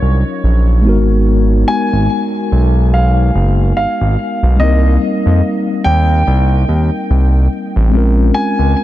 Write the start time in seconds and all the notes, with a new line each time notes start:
Already playing: F#3 C#4 D#4 F4 A#4 C#5
0.02 C2
0.44 A#1
0.82 G#1 G#3 B3 D#4
0.87 F#4 A#4
1.68 G#5
1.92 G#1
2.52 B1
2.94 F5
3.35 F#1
3.77 G#1 F5
4.01 G#1
4.43 B1
4.56 C2 G3 A#3 C4 D#5
4.62 D#4 A#4
5.26 F2
5.84 D#2 G5
6.27 C2
6.69 D#2
7.10 C2
7.76 A1
7.90 A#1 G#3 C4 C#4
7.95 F4 A#4
8.34 G#5
8.59 C#2